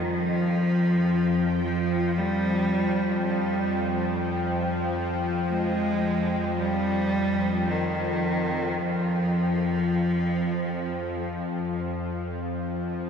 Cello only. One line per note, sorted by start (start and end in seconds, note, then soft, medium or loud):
0.01 1.63 F3 loud
1.64 2.20 F3 medium
2.18 3.25 G3 loud
3.26 4.07 G3 medium
5.49 6.55 G#3 loud
6.59 7.72 G3 loud
7.70 8.80 D#3 medium
8.79 12.06 F3 loud